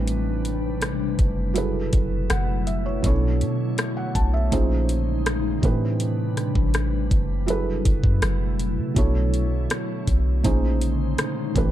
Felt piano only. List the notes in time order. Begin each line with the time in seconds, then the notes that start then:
Already playing: A2 E3 G3 C4 D4 B4
1.54 F#3 E4 G#4 A4
1.58 B4
2.30 F#5
2.67 E5
2.86 C#5
3.02 B2 F#3 C#4 E4 A4 C#5
3.10 D4
3.97 F#5
4.15 A5
4.34 E5
4.51 A#2 F3 C#4 D#4 G#4 C5
5.61 A2 E3 C4 D4 G4
5.65 B4
7.46 F#3 E4 G#4 A4 B4
8.94 B2 F#3 D4 E4 A4
8.98 C#5
10.43 A#2 F3 C#4 D#4 G#4 C5
11.54 A2 E3 C4 D4 G4
11.58 B4